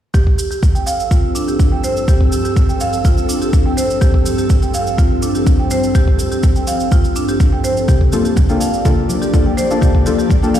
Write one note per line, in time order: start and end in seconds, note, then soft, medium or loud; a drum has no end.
0.14 7.84 G2 medium
0.14 7.85 F3 medium
0.14 7.85 C4 medium
0.14 0.25 G4 medium
0.14 7.85 A4 medium
0.14 7.85 E6 medium
0.14 kick loud
0.14 shaker soft
0.27 kick medium
0.38 0.50 G4 medium
0.38 shaker medium
0.51 0.62 G4 medium
0.51 shaker soft
0.63 kick loud
0.63 shaker soft
0.75 0.81 G5 medium
0.75 shaker soft
0.86 0.93 F5 medium
0.86 shaker medium
1.00 shaker soft
1.11 1.18 F4 medium
1.11 kick loud
1.11 shaker soft
1.35 1.47 D4 medium
1.35 shaker medium
1.48 1.59 G4 medium
1.48 shaker soft
1.59 kick loud
1.59 shaker soft
1.72 1.78 G5 medium
1.84 1.90 C5 medium
1.84 shaker medium
1.97 shaker soft
2.08 2.19 G4 medium
2.08 kick loud
2.08 shaker medium
2.21 kick medium
2.32 2.43 G4 medium
2.32 shaker medium
2.45 2.56 G4 medium
2.45 shaker soft
2.56 kick loud
2.56 shaker medium
2.69 2.75 G5 medium
2.69 shaker soft
2.80 2.87 F5 medium
2.80 shaker medium
2.93 shaker soft
3.05 3.12 F4 medium
3.05 kick loud
3.05 shaker medium
3.17 shaker soft
3.29 3.41 D4 medium
3.29 shaker medium
3.42 3.53 G4 medium
3.42 shaker soft
3.53 kick loud
3.53 shaker medium
3.66 3.72 G5 medium
3.77 3.84 C5 medium
3.77 shaker medium
3.90 shaker soft
4.01 4.13 G4 loud
4.01 kick loud
4.01 shaker soft
4.14 kick medium
4.26 4.37 G4 medium
4.26 shaker medium
4.38 4.49 G4 medium
4.38 shaker soft
4.50 kick loud
4.50 shaker medium
4.62 4.69 G5 medium
4.62 shaker soft
4.74 4.81 F5 medium
4.74 shaker medium
4.87 shaker soft
4.98 5.05 F4 medium
4.98 kick loud
4.98 shaker medium
5.22 5.34 D4 medium
5.22 shaker medium
5.35 5.46 G4 medium
5.35 shaker soft
5.47 kick loud
5.47 shaker medium
5.59 5.66 G5 medium
5.71 5.78 C5 medium
5.71 shaker medium
5.83 shaker soft
5.95 6.06 G4 medium
5.95 kick loud
5.95 shaker soft
6.08 kick medium
6.19 6.30 G4 medium
6.19 shaker medium
6.31 6.43 G4 medium
6.31 shaker soft
6.43 kick loud
6.43 shaker medium
6.56 6.62 G5 medium
6.56 shaker soft
6.67 6.74 F5 medium
6.67 shaker medium
6.80 shaker soft
6.92 6.99 F4 medium
6.92 kick loud
6.92 shaker medium
7.04 shaker soft
7.16 7.28 D4 medium
7.16 shaker medium
7.29 7.40 G4 medium
7.29 shaker soft
7.40 kick loud
7.40 shaker medium
7.52 7.59 G5 medium
7.64 7.71 C5 medium
7.64 shaker medium
7.77 shaker soft
7.88 10.60 F3 medium
7.88 10.60 A#3 medium
7.88 10.60 D4 medium
7.88 8.00 G4 medium
7.88 10.60 G4 medium
7.88 10.60 D5 medium
7.88 kick loud
7.88 low conga medium
7.88 shaker soft
8.01 kick medium
8.12 8.24 A#3 medium
8.12 8.24 D4 medium
8.12 8.24 F4 medium
8.12 8.24 G4 medium
8.12 8.24 A4 medium
8.12 muted conga soft
8.12 high conga medium
8.12 shaker medium
8.25 8.36 G4 medium
8.25 shaker soft
8.36 kick loud
8.36 high conga medium
8.36 low conga medium
8.36 shaker medium
8.49 8.66 A#3 medium
8.49 8.66 D4 medium
8.49 8.66 F4 medium
8.49 8.66 A4 loud
8.49 8.56 G5 medium
8.49 muted conga soft
8.49 shaker soft
8.61 8.68 F5 medium
8.61 shaker medium
8.74 shaker soft
8.85 9.31 A#3 medium
8.85 9.31 D4 medium
8.85 9.31 F4 medium
8.85 8.92 F4 medium
8.85 9.31 A4 loud
8.85 kick loud
8.85 muted conga medium
8.85 high conga medium
8.85 low conga loud
8.85 shaker medium
9.09 9.21 D4 medium
9.09 high conga medium
9.09 shaker medium
9.22 9.33 G4 medium
9.22 muted conga soft
9.22 shaker soft
9.33 9.45 A#3 medium
9.33 9.45 D4 medium
9.33 9.45 F4 medium
9.33 9.45 A4 loud
9.33 kick loud
9.33 shaker soft
9.46 9.52 G5 medium
9.46 high conga medium
9.57 9.64 C5 medium
9.57 muted conga soft
9.57 shaker medium
9.71 10.03 A#3 medium
9.71 10.04 D4 medium
9.71 10.04 F4 medium
9.71 10.04 A4 medium
9.71 shaker soft
9.81 9.93 G4 medium
9.81 kick loud
9.81 low conga medium
9.81 shaker soft
9.95 kick medium
10.06 10.17 A#3 medium
10.06 10.17 D4 medium
10.06 10.17 F4 medium
10.06 10.17 G4 medium
10.06 10.17 A4 medium
10.06 muted conga medium
10.06 high conga medium
10.06 shaker medium
10.19 10.30 G4 medium
10.19 shaker soft
10.30 kick loud
10.30 high conga medium
10.30 shaker soft
10.42 10.60 A#3 medium
10.42 10.60 D4 medium
10.42 10.60 F4 medium
10.42 10.60 A4 loud
10.42 10.49 G5 medium
10.42 muted conga soft
10.42 shaker soft
10.54 10.60 F5 medium
10.54 high conga medium
10.54 shaker medium